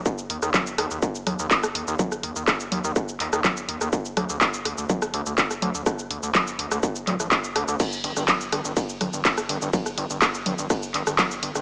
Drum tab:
CC |----------------|----------------|----------------|----------------|
RD |----------------|----------------|----------------|----------------|
HH |--o---o---o---o-|--o---o---o---o-|--o---o---o---o-|--o---o---o---o-|
SH |xx-xxx-xxx-xxx-x|xx-xxx-xxx-xxx-x|xx-xxx-xxx-xxx-x|xx-xxx-xxx-xxx-x|
CP |----x-------x---|----x-----x-x---|----x-------x---|----x-----x-x---|
SD |---r--r---r--r--|-r--r---r--r---r|--r---r--r---r--|r---r--r---r--r-|
CG |----O-----O-----|O-----O-----O---|--O-----O-----O-|----O-----O-----|
BD |o---o---o---o---|o---o---o---o---|o---o---o---o---|o---o---o---o---|

CC |x---------------|----------------|
RD |x---x---x---x---|x---x---x---x---|
HH |--o---o---o---o-|--o---o---o---o-|
SH |xx-xxx-xxx-xxx-x|xx-xxx-xxx-xxx-x|
CP |----x-------x---|----x-----x-x---|
SD |---r--r---r--r--|-r--r---r--r---r|
CG |----O-----O-----|O-----O-----O---|
BD |o---o---o---o---|o---o---o---o---|